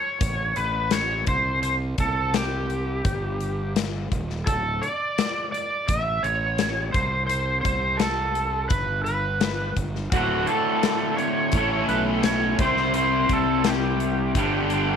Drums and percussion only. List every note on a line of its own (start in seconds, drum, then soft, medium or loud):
0.21 kick loud
0.21 closed hi-hat medium
0.56 closed hi-hat medium
0.91 snare loud
0.91 closed hi-hat medium
1.27 kick loud
1.27 closed hi-hat medium
1.63 closed hi-hat medium
1.98 kick medium
1.98 closed hi-hat medium
2.34 snare loud
2.34 closed hi-hat medium
2.70 closed hi-hat medium
3.05 kick medium
3.05 closed hi-hat medium
3.40 closed hi-hat medium
3.76 snare loud
3.76 closed hi-hat medium
4.12 kick medium
4.12 closed hi-hat medium
4.30 snare soft
4.47 kick loud
4.47 closed hi-hat medium
4.83 closed hi-hat medium
5.18 snare loud
5.18 closed hi-hat medium
5.54 closed hi-hat medium
5.88 kick medium
5.88 closed hi-hat medium
6.24 closed hi-hat medium
6.58 snare loud
6.58 closed hi-hat medium
6.94 kick medium
6.94 closed hi-hat medium
7.29 closed hi-hat medium
7.65 kick medium
7.65 closed hi-hat medium
8.00 snare loud
8.00 closed hi-hat medium
8.35 closed hi-hat medium
8.70 kick loud
8.70 closed hi-hat medium
9.06 closed hi-hat soft
9.41 snare loud
9.41 closed hi-hat medium
9.77 kick medium
9.77 closed hi-hat medium
9.95 snare soft
10.12 kick loud
10.12 closed hi-hat medium
10.47 closed hi-hat medium
10.83 snare loud
10.83 closed hi-hat medium
11.18 closed hi-hat medium
11.52 kick medium
11.52 closed hi-hat medium
11.89 closed hi-hat medium
12.23 snare loud
12.23 closed hi-hat medium
12.59 kick loud
12.59 closed hi-hat medium
12.77 snare soft
12.94 closed hi-hat medium
13.29 kick medium
13.29 closed hi-hat medium
13.64 snare loud
13.64 closed hi-hat medium
14.00 closed hi-hat medium
14.35 kick loud
14.35 closed hi-hat medium
14.70 closed hi-hat medium